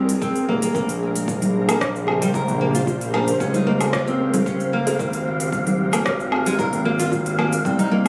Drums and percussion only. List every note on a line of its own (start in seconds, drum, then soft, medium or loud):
0.09 open hi-hat medium
0.09 shaker medium
0.22 kick loud
0.22 shaker medium
0.36 open hi-hat soft
0.36 shaker soft
0.62 open hi-hat medium
0.62 shaker medium
0.75 kick loud
0.75 shaker medium
0.89 open hi-hat soft
0.89 shaker soft
1.16 open hi-hat medium
1.16 shaker medium
1.28 kick loud
1.28 shaker medium
1.42 open hi-hat soft
1.42 low conga medium
1.42 shaker soft
1.69 open hi-hat medium
1.69 high bongo medium
1.69 low woodblock medium
1.69 shaker medium
1.81 kick loud
1.81 cross-stick medium
1.81 shaker medium
1.96 shaker soft
2.07 high bongo medium
2.07 low woodblock medium
2.22 open hi-hat medium
2.22 shaker medium
2.34 kick loud
2.34 shaker medium
2.48 open hi-hat soft
2.48 high conga medium
2.48 shaker soft
2.75 open hi-hat medium
2.75 high conga medium
2.75 shaker medium
2.87 kick loud
2.87 shaker medium
3.01 open hi-hat soft
3.01 shaker soft
3.14 low woodblock medium
3.28 open hi-hat medium
3.28 shaker medium
3.40 kick loud
3.40 shaker medium
3.54 open hi-hat soft
3.54 low conga medium
3.54 shaker soft
3.81 open hi-hat medium
3.81 high bongo medium
3.81 high conga medium
3.81 low woodblock medium
3.81 shaker medium
3.93 kick loud
3.93 cross-stick medium
3.93 shaker medium
4.07 high conga medium
4.07 shaker soft
4.34 open hi-hat medium
4.34 high bongo medium
4.34 low conga medium
4.34 shaker medium
4.46 kick loud
4.46 shaker medium
4.60 open hi-hat soft
4.60 shaker soft
4.73 high bongo soft
4.87 open hi-hat medium
4.87 high bongo medium
4.87 shaker medium
4.99 kick loud
4.99 shaker medium
5.13 open hi-hat medium
5.13 shaker soft
5.40 open hi-hat medium
5.40 shaker medium
5.53 kick loud
5.53 shaker medium
5.67 open hi-hat soft
5.67 low conga loud
5.67 shaker soft
5.93 open hi-hat medium
5.93 high bongo medium
5.93 low woodblock medium
5.93 shaker medium
6.06 kick loud
6.06 cross-stick medium
6.06 shaker medium
6.20 shaker soft
6.32 high bongo medium
6.32 low woodblock medium
6.46 open hi-hat medium
6.46 shaker medium
6.59 kick loud
6.59 shaker medium
6.73 open hi-hat soft
6.73 high conga medium
6.73 shaker soft
6.99 open hi-hat medium
6.99 high conga medium
6.99 shaker medium
7.12 kick loud
7.12 shaker medium
7.26 open hi-hat soft
7.26 shaker soft
7.39 low woodblock medium
7.53 open hi-hat medium
7.53 shaker medium
7.65 kick loud
7.65 shaker medium
7.79 open hi-hat soft
7.79 low conga medium
7.79 shaker soft
8.05 high conga medium